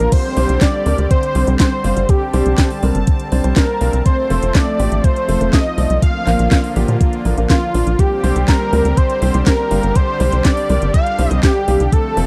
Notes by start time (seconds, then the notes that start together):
Already playing: D3 A#3 F4 A#4
0.00 A#1
0.12 G3 C4 G4 C5, kick, closed hi-hat, crash
0.37 C2 G3 C4 D4 C5, open hi-hat
0.49 C2, closed hi-hat
0.61 D5, kick, snare, clap, closed hi-hat
0.86 D2 G3 C4 D4 A#4, open hi-hat
0.98 D2, closed hi-hat
1.11 C5, kick, closed hi-hat
1.23 closed hi-hat
1.35 C2 G3 C4 D4 C5, open hi-hat
1.47 C2 G3 C4 D4 C5, closed hi-hat
1.60 C5, kick, snare, clap, closed hi-hat
1.84 G1 G3 C4 D4 F5, open hi-hat
1.97 G1, closed hi-hat
2.09 G4 A5, kick, closed hi-hat
2.33 C2 G3 C4 D4 C5, open hi-hat
2.46 C2, closed hi-hat
2.58 kick, snare, clap, closed hi-hat
2.70 open hi-hat
2.83 C2 G3 C4 D4 A#4, open hi-hat
2.95 G1, closed hi-hat
3.07 kick, closed hi-hat
3.20 closed hi-hat
3.32 C2 G3 C4 D4 C5, open hi-hat
3.44 C2 G3 C4 D4 C5, closed hi-hat
3.56 A#4, kick, snare, clap, closed hi-hat
3.81 C2 G3 C4 D4 F5, open hi-hat
3.93 C2, closed hi-hat
4.06 F3 A3 C5, kick, closed hi-hat
4.30 F1 F3 A3 C4 A4, open hi-hat
4.43 F1, closed hi-hat
4.55 D5, kick, snare, clap, closed hi-hat
4.79 A1 F3 A3 C4 G4, open hi-hat
4.92 A1, closed hi-hat
5.04 C5, kick, closed hi-hat
5.16 closed hi-hat
5.28 F1 F3 A3 C4 A4, open hi-hat
5.41 F1 F3 A3 C4 A4, closed hi-hat
5.53 D#5, kick, snare, clap, closed hi-hat
5.78 C2 F3 A3 C4 D5, open hi-hat
5.90 C2, closed hi-hat
6.02 D3 A#3 F4 F5, kick, closed hi-hat
6.27 A#1 F3 A#3 D4 A#4, clap, open hi-hat
6.39 A#1, closed hi-hat
6.51 kick, snare, clap, closed hi-hat
6.64 open hi-hat
6.76 A#1 F3 A#3 D4 G4, open hi-hat
6.88 A#2, closed hi-hat
7.01 kick, closed hi-hat
7.13 closed hi-hat
7.25 A#1 F3 A#3 D4 A#4, open hi-hat
7.37 A#1 F3 A#3 D4 A#4, closed hi-hat
7.50 F4, kick, snare, clap, closed hi-hat
7.74 A#1 F3 A#3 D4 D5, open hi-hat
7.87 A#1, closed hi-hat
7.99 D3 G3 C4 G4, kick, closed hi-hat
8.23 C2 G3 C4 D4 C5, open hi-hat
8.36 C2, closed hi-hat
8.48 A#4, kick, snare, clap, closed hi-hat
8.73 D2 G3 C4 D4 A#4, open hi-hat
8.85 D2, closed hi-hat
8.97 C5, kick, closed hi-hat
9.10 closed hi-hat
9.22 C2 G3 C4 D4 C5, open hi-hat
9.34 C2 G3 C4 D4 C5, closed hi-hat
9.46 A#4, kick, snare, clap, closed hi-hat
9.71 G1 G3 C4 D4 F5, open hi-hat
9.83 G1, closed hi-hat
9.95 D4 C5, kick, closed hi-hat
10.20 C2 G3 C4 D4 C5, open hi-hat
10.32 C2, closed hi-hat
10.45 D5, kick, snare, clap, closed hi-hat
10.57 open hi-hat
10.69 C2 G3 C4 D4 A#4, open hi-hat
10.82 G1, closed hi-hat
10.94 F5, kick, closed hi-hat
11.07 closed hi-hat
11.19 C2 G3 C4 D4 C5, open hi-hat
11.31 C2 G3 C4 D4 C5, closed hi-hat
11.43 G4, kick, snare, clap, closed hi-hat
11.68 C2 G3 C4 D4 F5, open hi-hat
11.80 C2, closed hi-hat
11.92 F3 A3 C4 A4, kick, closed hi-hat
12.17 F1 F3 A3 C4 A4, open hi-hat